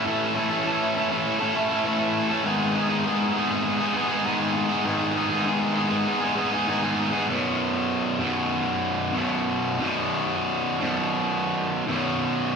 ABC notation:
X:1
M:4/4
L:1/16
Q:1/4=99
K:B
V:1 name="Distorted electric guitar"
[=A,,E,=A,CE=A]2 [A,CEA] [A,CEA] [A,,E,A,CEA]2 [A,CEA] [A,CEA]2 [A,CEA] [A,CEA] [A,CEA] [A,,E,A,CEA] [A,CEA]2 [A,CEA] | [G,,D,G,B,DG]2 [G,B,DG] [G,B,DG] [G,,D,G,B,DG]2 [G,B,DG] [G,B,DG]2 [G,B,DG] [G,B,DG] [G,B,DG] [G,,D,G,B,DG] [G,B,DG]2 [G,B,DG] | [G,,D,G,B,DG]2 [G,B,DG] [G,B,DG] [G,,D,G,B,DG]2 [G,B,DG] [G,B,DG]2 [G,B,DG] [G,B,DG] [G,B,DG] [G,,D,G,B,DG] [G,B,DG]2 [G,B,DG] | [B,,,F,,B,,]6 [B,,,F,,B,,]6 [B,,,F,,B,,]4 |
[B,,,F,,B,,]6 [B,,,F,,B,,]6 [B,,,F,,B,,]4 |]